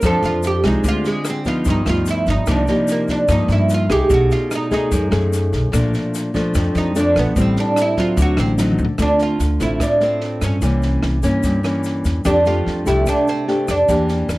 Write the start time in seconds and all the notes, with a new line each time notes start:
0.02 F2 F3 D4 A4 C5, kick, cross-stick, snare, shaker
0.06 A4
0.23 F2 F4, snare, shaker
0.43 snare, shaker
0.47 G4
0.64 C2 G#3 C4 D#4 F4, kick, cross-stick, snare, shaker
0.84 D2 D3, kick, snare, shaker
0.88 F4
1.05 G#3, snare, shaker
1.25 cross-stick, snare, shaker
1.30 C4
1.45 F3 B3 D#4 F4, kick, snare, shaker
1.65 G1 G2, kick, snare, shaker
1.70 D#4
1.86 D2 F3 B3 D#4 F4, cross-stick, snare, shaker
2.06 snare, shaker
2.11 E4
2.26 G1 D#4, kick, snare, shaker
2.46 C2 C3 F3 A#3 D#4, kick, cross-stick, snare, shaker
2.51 D4
2.67 F3 G3 A#3 D#4, snare, shaker
2.87 snare, shaker
2.92 A#3
3.08 D4, kick, snare, shaker
3.28 G2 F3 A#3 D#4, kick, cross-stick, snare, shaker
3.48 G2 E4, snare, shaker
3.69 snare, shaker
3.74 F4
3.89 C2 A3 D#4 G4 G#4, kick, cross-stick, snare, shaker
4.10 B1 B2, kick, snare, shaker
4.14 F#4
4.31 F4, snare, shaker
4.51 cross-stick, snare, shaker
4.55 D#4
4.71 A3 D#4 G#4, kick, snare, shaker
4.92 F#2, kick, snare, shaker
5.11 F#2 A3 D#4 G#4, cross-stick, snare, shaker
5.33 snare, shaker
5.53 B1, kick, snare, shaker
5.72 A#1 A#2 F3 A3 D4, kick, cross-stick, snare, shaker
5.94 snare, shaker
6.14 snare, shaker
6.34 F3 A3 D4, kick, snare, shaker
6.54 F2, kick, cross-stick, snare, shaker
6.75 F2 D#4, snare, shaker
6.95 F3 A3 D4, snare, shaker
6.99 D4
7.16 A#1 B3, kick, cross-stick, snare, shaker
7.36 A1 A2 G3 C4 E4, kick, snare, shaker
7.41 C4
7.57 D4, snare, shaker
7.76 cross-stick, snare, shaker
7.82 E4
7.97 F#3 C4 F4, kick, snare, shaker
8.17 D2 D3, kick, snare, shaker
8.22 F#4
8.37 A1 C4, cross-stick, snare, shaker
8.58 F#3 C4 D#4, snare, shaker
8.72 mid tom
8.78 D2, shaker
8.85 floor tom
8.98 D2 D3 A3 C4 D4 F4, kick, cross-stick, snare, shaker
9.19 F4, snare, shaker
9.39 D2, snare, shaker
9.60 A1 A3 C4 E4 F4, kick, snare, shaker
9.80 A2 D4, kick, cross-stick, snare, shaker
10.01 A3 C4 F4, snare, shaker
10.21 snare
10.41 G2 C#4, kick, cross-stick, snare, shaker
10.62 C2 C3 E3 A#3 C#4, kick, snare, shaker
10.82 snare, shaker
11.03 C2, cross-stick, snare
11.23 G2 E3 A#3 C#4, kick, snare, shaker
11.43 G2, kick, snare, shaker
11.63 E3 A#3 C#4, cross-stick, snare, shaker
11.84 snare, shaker
12.05 E2, kick, snare, shaker
12.25 F2 F3 A3 D4 G4, kick, cross-stick, snare, shaker
12.45 A3 D4 F4 G4, snare, shaker
12.66 F2, snare
12.86 C2 A3 D4 E4 G4, kick, snare, shaker
13.06 C3 D4, kick, cross-stick, snare, shaker
13.27 C4, snare, shaker
13.48 A3 D4 G4, snare
13.68 F2 D4, kick, cross-stick, snare, shaker
13.89 E2 E3 A#3 D4 G4, kick, snare, shaker
14.09 snare, shaker
14.29 E2, cross-stick, snare, shaker